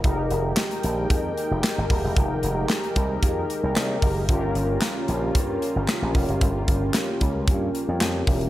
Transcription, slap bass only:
X:1
M:4/4
L:1/16
Q:1/4=113
K:Fm
V:1 name="Slap bass" clef=bass
F,,,2 F,,,2 z2 B,,,2 F,,2 z F,,, z A,,, E,,, =E,,, | F,,,2 F,,,2 z2 C,,2 F,,2 z C,, C,,2 _G,,,2 | G,,,2 G,,,2 z2 B,,,2 G,,2 z G,,, z B,,, F,,, _G,,, | G,,,2 G,,,2 z2 D,,2 G,,2 z F,, F,,2 =E,,,2 |]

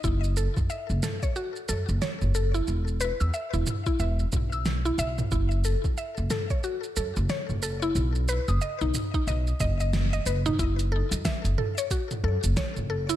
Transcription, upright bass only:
X:1
M:4/4
L:1/16
Q:"Swing 16ths" 1/4=91
K:F#dor
V:1 name="Upright bass" clef=bass
F,,,2 z F,, z F,,, z4 F,, F,,, z F,,,2 z | E,,,2 z E,, z E,,, z2 E,,, z B,,,3 z B,,, z | F,,,2 z F,, z F,,, z4 F,, F,,, z F,,,2 z | B,,,2 z F,,, z B,,, z2 B,,, z F,,,3 z F,,, z |
F,,,2 z F,, z F,,, z4 F,, F,,, z F,,,2 z |]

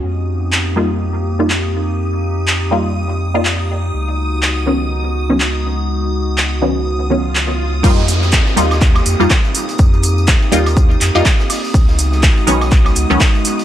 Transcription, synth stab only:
X:1
M:4/4
L:1/16
Q:"Swing 16ths" 1/4=123
K:Fm
V:1 name="Synth stab"
z6 [G,B,EF]4- [G,B,EF] [G,B,EF] z4 | z6 [G,B,EF]4- [G,B,EF] [G,B,EF] z4 | z6 [E,_G,_CD]4- [E,G,CD] [E,G,CD] z4 | z6 [E,_G,_CD]4 [E,G,CD]6 |
[G,B,EF]6 [G,B,EF]4- [G,B,EF] [G,B,EF] z4 | z6 [G,B,EF]4- [G,B,EF] [G,B,EF] z4 | z6 [E,_G,_CD]4- [E,G,CD] [E,G,CD] z4 |]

